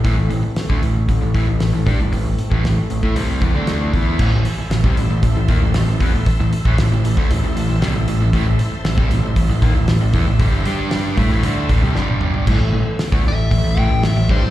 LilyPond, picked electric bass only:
\new Staff \with { instrumentName = "Picked electric bass" } { \clef bass \time 4/4 \key a \minor \tempo 4 = 116 a,,16 a,,16 a,,16 r8 d,16 a,,8 a,,16 a,,16 a,,16 a,,8 a,,16 g,16 a,,16 | a,,8 r16 a,,16 a,,16 r16 a,,16 a,16 c,8 e,16 d,8. e,8 | a,,16 a,,16 r8 a,,16 c,16 a,,16 a,,16 a,,16 a,,16 dis,16 a,,16 a,,16 a,,16 e,16 a,,16 | r16 a,,16 r16 a,,16 a,,16 a,,16 a,,16 d,16 a,,16 a,,16 a,,16 a,,16 c,16 a,,16 a,,16 a,,16 |
a,,16 a,,16 r8 a,,16 c,16 a,,16 a,,16 a,,16 a,,16 dis,16 a,,16 a,,16 a,,16 e,16 a,,16 | g,,8 g,4 a,16 a,,16 d,8 a,,16 c,16 g,,4 | a,,16 a,,16 a,,16 r8 d,16 a,,8 a,,16 a,,16 a,,16 a,,8 a,,16 g,16 a,,16 | }